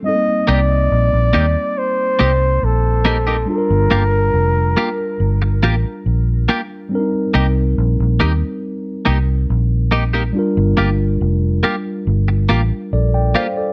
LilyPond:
<<
  \new Staff \with { instrumentName = "Flugelhorn" } { \time 4/4 \key c \dorian \tempo 4 = 70 ees''8 d''4. c''4 a'4 | bes'2. r4 | r1 | r1 | }
  \new Staff \with { instrumentName = "Tine electric piano" } { \time 4/4 \key c \dorian << { r1 | r1 | r1 | r2. <a' d''>16 <d'' g''>16 <c'' f''>16 <a' d''>16 | } \\ { <g bes c' ees' a'>1 | <g d' f' a' bes'>1 | <g c' d' ees' bes'>1 | <g d' f' bes'>1 | } >> }
  \new Staff \with { instrumentName = "Clean electric guitar" } { \time 4/4 \key c \dorian r8 <bes ees' g'>16 r8. <bes ees' g'>16 r8. <bes ees' g'>16 r8. <bes ees' g'>16 <bes ees' g'>16 | r8 <bes f' g'>16 r8. <bes f' g'>16 r8. <bes f' g'>16 r8. <bes f' g'>16 r16 | r8 <bes ees' g'>16 r8. <bes ees' g'>16 r8. <bes ees' g'>16 r8. <bes ees' g'>16 <bes ees' g'>16 | r8 <bes f' g'>16 r8. <bes f' g'>16 r8. <bes f' g'>16 r8. <bes f' g'>16 r16 | }
  \new Staff \with { instrumentName = "Fingered electric bass" } { \clef bass \time 4/4 \key c \dorian r8 c,8 bes,,16 bes,,16 ees,16 r8. c,8 bes,,4 | r16 g,,16 g,,8 f,,8 r8 g,,8 a,,16 r16 bes,,8 r8 | r8 c,8 bes,,16 bes,,16 ees,16 r8. c,8 bes,,4 | r16 g,,16 g,,8 f,,8 r8 g,,8 a,,16 r16 bes,,8 r8 | }
>>